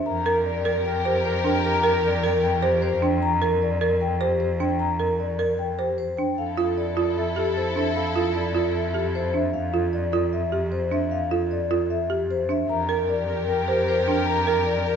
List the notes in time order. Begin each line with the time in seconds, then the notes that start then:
Already playing: D4 E5
0.06 F2 G4 A#4 A#5
0.26 A#4
0.46 A#4 D5
0.65 A#4
0.85 A#4 G5
1.05 G4 A#4 C5
1.25 A#4 C5
1.44 D4 A#4 G5
1.64 A#4 A#5
1.84 A#4
2.04 A#4 D5
2.23 A#4
2.43 A#4 G5
2.62 G4 A#4 C5
2.82 A#4 C5
3.02 D4 G5
3.23 A#5
3.42 A#4
3.62 D5
3.81 A#4
4.01 G5
4.21 G4 C5
4.40 C5
4.60 D4 G5
4.79 A#5
5.00 A#4
5.20 D5
5.39 A#4
5.59 G5
5.79 G4 C5
5.98 C5
6.17 D4 G5
6.38 F2 E4 A4 F5
6.58 F4 A4
6.78 A4 D5
6.97 F4 A4
7.17 A4 E5
7.36 G4 A4
7.57 A4 C5
7.76 D4 A4 E5
7.96 A4 F5
8.16 F4 A4
8.36 A4 D5
8.54 F4 A4
8.75 A4 E5
8.94 G4 A4
9.15 A4 C5
9.34 D4 E5
9.53 F5
9.74 F4 A4
9.93 D5
10.13 F4 A4
10.33 E5
10.52 G4
10.72 C5
10.91 D4 E5
11.11 F5
11.31 F4 A4
11.51 D5
11.71 F4 A4
11.90 E5
12.10 G4
12.31 C5
12.49 D4 E5
12.69 F2 G4 A#4 A#5
12.89 A#4
13.09 A#4 D5
13.29 A#4
13.49 A#4 G5
13.68 G4 A#4 C5
13.88 A#4 C5
14.08 D4 A#4 G5
14.28 A#4 A#5
14.47 A#4
14.67 A#4 D5
14.86 A#4